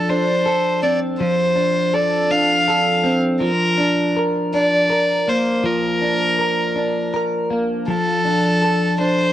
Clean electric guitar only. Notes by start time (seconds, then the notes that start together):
Already playing: F3 A4
0.09 D4
0.46 A4
0.83 C4
1.20 F3
1.56 D4
1.94 A4
2.31 D4
2.68 A4
3.04 C4
3.40 F3
3.78 D4
4.17 A#4
4.54 D4
4.90 A#4
5.28 A#3
5.63 F3
6.02 D4
6.39 A#4
6.76 D4
7.14 A#4
7.50 A#3
7.88 F3
8.25 D4
8.62 A4
8.99 D4